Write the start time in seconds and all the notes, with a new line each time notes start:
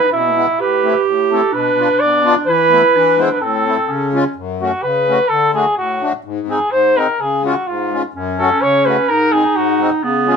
Already playing: E4
0.12 B2 E4
0.36 G#3 B3 E4
0.59 A2 G4 B4
0.84 A3 C4 E4
1.06 A2
1.31 A3 C4 E4 A4
1.53 B2 D4 B4
1.78 B3 D4 F4
2.00 B2 D5
2.24 B3 D4 F4
2.47 E3 E4 B4
2.70 A3 B3 E4
2.93 E3 D4
3.18 G#3 B3 E4 C5
3.32 B4
3.41 A2 C4 A4
3.66 A3 C4 E4
3.88 C#3 C#4
4.13 G#3 C#4 F4
4.36 F#2
4.60 A3 C#4 F#4
4.82 C#3 B4
5.08 A3 C#4 F#4
5.29 D3 A4
5.54 A3 D4 F#4 G#4
5.77 A2 F#4
6.01 A3 D4 F#4
6.24 G#2
6.47 G#3 C4 D#4 G#4
6.70 G#2 C5
6.96 G#3 C4 D#4 A#4
7.19 C#3 G#4
7.43 G#3 C#4 F4 F#4
7.67 G#2 F4
7.92 G#3 C#4 F4
8.14 F#2 C#4
8.39 A3 C#4 F#4 A4
8.61 C#3 C#5
8.85 A3 C#4 F#4 B4
9.08 G#2 D#4 A#4
9.32 G#3 C4 D#4 G#4
9.54 G#2 F#4
9.79 G#3 C4 D#4
10.01 C#3 B3
10.26 G#3 C#4 F4 G#4